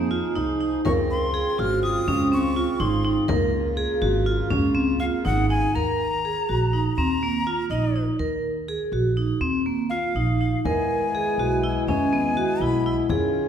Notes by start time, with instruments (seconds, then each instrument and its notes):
Already playing: upright bass F2, harmonium F3 D#4 G#4
0.11 vibraphone F4, frame drum
0.36 upright bass C2, vibraphone D#4, frame drum
0.60 vibraphone D#4, frame drum
0.85 upright bass C#2, harmonium C#3 C4 F4, vibraphone A#4, flute C#6, frame drum
1.11 flute C6
1.34 vibraphone G#4
1.58 upright bass G#1, vibraphone F#4, flute F6, frame drum
1.83 vibraphone F4, flute D#6
2.08 upright bass C#2, vibraphone C#4, frame drum
2.32 vibraphone C4, flute C#6
2.56 vibraphone F4
2.80 upright bass G#1, vibraphone D#4, flute C6, frame drum
3.04 vibraphone D#4
3.28 upright bass C#2, harmonium A#3, vibraphone A#4, frame drum
3.77 vibraphone G#4
4.02 upright bass G#1, vibraphone F#4, frame drum
4.26 vibraphone F4
4.50 upright bass C#2, vibraphone C#4, frame drum
4.75 vibraphone C4, frame drum
4.99 vibraphone F4, flute F5
5.25 upright bass G#1, vibraphone D#4, flute F#5, frame drum
5.50 vibraphone D#4, flute G#5
5.75 upright bass D#2, vibraphone A#4, flute A#5
6.25 vibraphone G#4
6.49 upright bass A#1, vibraphone F#4
6.73 vibraphone D#4
6.96 upright bass D#2, vibraphone C4, flute A#5
7.23 vibraphone A#3
7.47 vibraphone F4
7.70 upright bass A#1, vibraphone D#4, flute D#5
7.96 vibraphone D#4
8.19 upright bass D#2, vibraphone A#4
8.68 vibraphone G#4
8.92 upright bass A#1, vibraphone F#4
9.17 vibraphone D#4
9.41 upright bass D#2, vibraphone C4
9.66 vibraphone A#3
9.90 vibraphone F4, flute F5
10.15 upright bass A#1, vibraphone D#4
10.41 vibraphone D#4
10.64 upright bass D#2, harmonium G#3 B3 E4, vibraphone A#4, flute G#5, frame drum
10.90 frame drum
11.15 vibraphone G#4
11.38 upright bass B1, vibraphone F#4, frame drum
11.64 vibraphone E4
11.87 upright bass D#2, vibraphone C#4, flute G#5, frame drum
12.13 vibraphone B3, frame drum
12.37 vibraphone F#4
12.60 upright bass B1, vibraphone E4, flute B5, frame drum
12.86 vibraphone E4
13.09 upright bass D#2, harmonium D#3 C#4 F4, vibraphone G#4, frame drum
13.34 frame drum